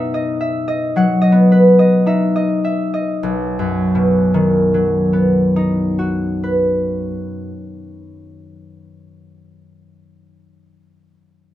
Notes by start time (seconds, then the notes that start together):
Already playing: B2 B3 D#4 B4 D#5 E5 F#5
0.14 D#5
0.41 E5
0.68 D#5
0.96 F#3 F#5
1.22 D#5
1.32 B3
1.52 B4
1.79 D#5
2.06 D#4 E5
2.36 D#5
2.65 E5
2.94 D#5
3.23 B1
3.59 F#2
3.95 B2
4.34 D#3
4.74 F#3
5.13 B3
5.56 D#4
5.99 F#4
6.44 B4